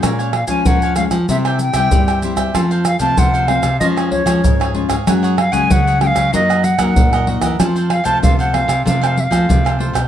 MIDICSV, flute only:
0, 0, Header, 1, 2, 480
1, 0, Start_track
1, 0, Key_signature, -5, "minor"
1, 0, Tempo, 630252
1, 24, Time_signature, 4, 2, 24, 8
1, 7676, End_track
2, 0, Start_track
2, 0, Title_t, "Flute"
2, 0, Program_c, 0, 73
2, 253, Note_on_c, 0, 77, 76
2, 366, Note_off_c, 0, 77, 0
2, 371, Note_on_c, 0, 80, 78
2, 507, Note_on_c, 0, 78, 81
2, 518, Note_off_c, 0, 80, 0
2, 731, Note_off_c, 0, 78, 0
2, 736, Note_on_c, 0, 77, 77
2, 791, Note_off_c, 0, 77, 0
2, 991, Note_on_c, 0, 76, 76
2, 1044, Note_off_c, 0, 76, 0
2, 1227, Note_on_c, 0, 79, 85
2, 1676, Note_off_c, 0, 79, 0
2, 2180, Note_on_c, 0, 77, 90
2, 2284, Note_off_c, 0, 77, 0
2, 2288, Note_on_c, 0, 81, 84
2, 2427, Note_on_c, 0, 78, 91
2, 2438, Note_off_c, 0, 81, 0
2, 2648, Note_on_c, 0, 77, 85
2, 2659, Note_off_c, 0, 78, 0
2, 2888, Note_off_c, 0, 77, 0
2, 2892, Note_on_c, 0, 75, 79
2, 2948, Note_off_c, 0, 75, 0
2, 3130, Note_on_c, 0, 73, 73
2, 3588, Note_off_c, 0, 73, 0
2, 4106, Note_on_c, 0, 77, 83
2, 4207, Note_on_c, 0, 80, 91
2, 4218, Note_off_c, 0, 77, 0
2, 4353, Note_on_c, 0, 78, 85
2, 4364, Note_off_c, 0, 80, 0
2, 4580, Note_off_c, 0, 78, 0
2, 4584, Note_on_c, 0, 79, 82
2, 4622, Note_on_c, 0, 77, 89
2, 4629, Note_off_c, 0, 79, 0
2, 4809, Note_off_c, 0, 77, 0
2, 4832, Note_on_c, 0, 75, 86
2, 5060, Note_on_c, 0, 78, 84
2, 5071, Note_off_c, 0, 75, 0
2, 5543, Note_off_c, 0, 78, 0
2, 6022, Note_on_c, 0, 77, 85
2, 6132, Note_on_c, 0, 81, 85
2, 6143, Note_off_c, 0, 77, 0
2, 6259, Note_off_c, 0, 81, 0
2, 6263, Note_on_c, 0, 77, 81
2, 6377, Note_off_c, 0, 77, 0
2, 6392, Note_on_c, 0, 78, 72
2, 6503, Note_on_c, 0, 77, 77
2, 6514, Note_off_c, 0, 78, 0
2, 6743, Note_off_c, 0, 77, 0
2, 6747, Note_on_c, 0, 77, 77
2, 6877, Note_on_c, 0, 79, 71
2, 6885, Note_off_c, 0, 77, 0
2, 6907, Note_on_c, 0, 77, 77
2, 6915, Note_off_c, 0, 79, 0
2, 7006, Note_on_c, 0, 76, 71
2, 7014, Note_off_c, 0, 77, 0
2, 7037, Note_on_c, 0, 77, 77
2, 7045, Note_off_c, 0, 76, 0
2, 7437, Note_off_c, 0, 77, 0
2, 7676, End_track
0, 0, End_of_file